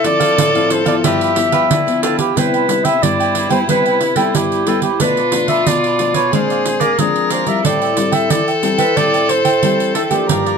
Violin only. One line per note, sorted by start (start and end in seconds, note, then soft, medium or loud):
0.00 1.06 A4 loud
1.04 1.70 G4 medium
1.71 2.33 E4 medium
2.36 5.02 E4 medium
5.00 6.33 F4 loud
6.32 6.99 G#4 medium
6.98 7.64 A#4 medium
7.64 10.29 A4 loud
10.28 10.58 A#4 loud